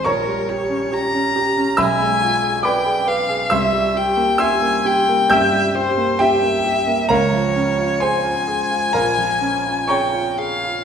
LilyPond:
<<
  \new Staff \with { instrumentName = "Violin" } { \time 4/4 \key c \phrygian \tempo 4 = 67 bes'8 des''8 bes''4 gis''4 g''8 f''8 | e''8 g''8 aes''8 g''8 e''8 c''8 e''4 | des''4 aes''2 g''8 f''8 | }
  \new Staff \with { instrumentName = "Grand piano" } { \time 4/4 \key c \phrygian << { <des'' bes'' des'''>2 <e'' b'' e'''>4 <d'' b'' d'''>4 | <e'' c''' e'''>4 <e'' c''' e'''>4 <g'' e''' g'''>4 <g' e'' g''>4 | <bes' f'' bes''>4 <c'' aes'' c'''>4 <bes' f'' bes''>4 <des'' bes'' des'''>4 | } \\ { bes,,16 g16 g'16 des'16 g'16 des'16 g'16 des'16 b,,16 gis16 f'16 gis'16 b'16 gis'16 b'16 gis'16 | c,16 g16 g'16 bes16 g'16 bes16 g'16 bes16 g,16 g16 g'16 bes8 bes16 g'16 bes16 | des,16 f16 des'16 f'16 aes'16 f'16 aes'16 f'16 bes,,16 f16 des'16 f'16 aes'16 f'16 aes'16 f'16 | } >> }
>>